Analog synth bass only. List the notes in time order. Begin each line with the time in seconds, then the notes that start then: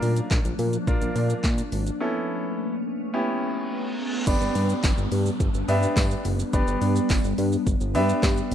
0.02 A#2
0.31 A#1
0.45 A#1
0.59 A#2
0.87 A#1
1.01 A#1
1.16 A#2
1.44 A#2
1.72 G#1
4.27 G1
4.41 G1
4.55 G2
4.84 G1
4.98 G1
5.12 G2
5.40 G1
5.54 G1
5.69 G2
5.96 G2
6.25 F#1
6.53 G1
6.68 G1
6.82 G2
7.10 G1
7.24 G1
7.38 G2
7.67 G1
7.81 G1
7.95 G2
8.23 G2
8.52 A#1